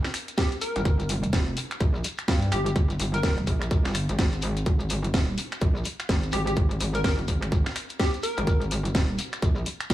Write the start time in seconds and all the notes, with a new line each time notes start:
0.05 finger snap, snare, closed hi-hat, shekere
0.14 finger snap, open hi-hat, shekere
0.28 closed hi-hat, shekere
0.37 G4, kick, snare, closed hi-hat, shekere
0.52 closed hi-hat, shekere
0.61 A#4, open hi-hat, shekere
0.76 G1, closed hi-hat, shekere
0.85 G1, kick, closed hi-hat, shekere
1.00 closed hi-hat, shekere
1.09 open hi-hat, shekere
1.23 closed hi-hat, shekere
1.33 F1, kick, snare, closed hi-hat, shekere
1.57 open hi-hat, shekere
1.71 finger snap, closed hi-hat, shekere
1.80 A#1, kick, closed hi-hat, shekere
1.95 shekere
2.04 open hi-hat, shekere
2.18 finger snap, closed hi-hat, shekere
2.28 G2, kick, snare, closed hi-hat, shekere
2.42 closed hi-hat, shekere
2.52 G1 G4, finger snap, open hi-hat, shekere
2.66 G4, closed hi-hat, shekere
2.76 kick, closed hi-hat, shekere
2.90 closed hi-hat, shekere
3.00 G1, open hi-hat, shekere
3.14 A#4, closed hi-hat, shekere
3.23 A#4, kick, snare, closed hi-hat, shekere
3.38 closed hi-hat
3.47 A#1, kick, open hi-hat, shekere
3.62 finger snap, closed hi-hat, shekere
3.71 A#1, kick, closed hi-hat, shekere
3.85 G1, finger snap, snare, closed hi-hat, shekere
3.95 finger snap, open hi-hat, shekere
4.09 G#1, closed hi-hat, shekere
4.19 G#1, kick, snare, closed hi-hat, shekere
4.32 closed hi-hat, shekere
4.42 open hi-hat, shekere
4.57 closed hi-hat, shekere
4.66 G#1, kick, closed hi-hat, shekere
4.79 closed hi-hat, shekere
4.90 open hi-hat, shekere
5.04 closed hi-hat, shekere
5.14 D#1, kick, snare, closed hi-hat, shekere
5.38 open hi-hat, shekere
5.52 finger snap, closed hi-hat, shekere
5.61 A#1, kick, closed hi-hat, shekere
5.76 shekere
5.84 open hi-hat, shekere
6.00 finger snap, closed hi-hat, shekere
6.09 G#1, kick, snare, closed hi-hat, shekere
6.23 closed hi-hat, shekere
6.32 G#1 G4, finger snap, open hi-hat, shekere
6.47 G4, closed hi-hat, shekere
6.56 kick, closed hi-hat, shekere
6.71 closed hi-hat, shekere
6.80 G#1, open hi-hat, shekere
6.94 A#4, closed hi-hat, shekere
7.04 A#4, kick, snare, closed hi-hat, shekere
7.19 closed hi-hat
7.28 G#1, kick, open hi-hat, shekere
7.42 finger snap, closed hi-hat, shekere
7.52 kick, closed hi-hat, shekere
7.66 finger snap, snare, closed hi-hat, shekere
7.75 finger snap, open hi-hat, shekere
7.89 closed hi-hat, shekere
7.99 G4, kick, snare, closed hi-hat, shekere
8.14 closed hi-hat, shekere
8.23 A#4, open hi-hat, shekere
8.37 G#1, closed hi-hat, shekere
8.47 G#1, kick, closed hi-hat, shekere
8.62 closed hi-hat, shekere
8.71 open hi-hat, shekere
8.85 closed hi-hat, shekere
8.95 D#1, kick, snare, closed hi-hat, shekere
9.18 open hi-hat, shekere
9.33 finger snap, closed hi-hat, shekere
9.42 A#1, kick, closed hi-hat, shekere
9.56 shekere
9.66 open hi-hat, shekere
9.80 finger snap, closed hi-hat, shekere
9.90 G#1, kick, snare, closed hi-hat, shekere